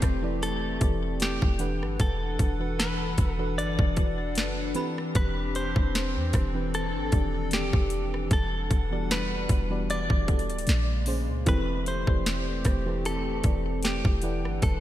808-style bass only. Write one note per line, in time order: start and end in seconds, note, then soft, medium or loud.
0.02 0.78 E1 loud
0.81 1.40 E1 loud
1.42 1.83 E1 loud
1.81 1.99 G1 loud
2.00 2.37 E1 loud
2.39 3.15 E1 loud
3.18 3.59 E1 loud
3.57 3.78 G1 medium
3.79 4.38 E1 loud
4.36 4.74 F#1 loud
5.15 5.74 E1 loud
5.76 6.17 E1 loud
6.16 6.33 E2 loud
6.34 6.96 E1 loud
6.95 7.12 G1 medium
7.12 7.71 E1 loud
7.73 8.29 E1 loud
8.31 8.69 E1 loud
8.71 9.46 E1 loud
9.49 10.08 E1 loud
10.10 10.51 E1 loud
10.49 10.67 D1 loud
10.68 11.30 A#1 loud
11.28 11.46 C#2 loud
11.47 12.05 E1 loud
12.07 12.63 E1 loud
12.65 13.41 E1 loud
13.44 14.02 E1 loud
14.05 14.46 E1 loud
14.44 14.62 G1 loud
14.63 14.80 E1 loud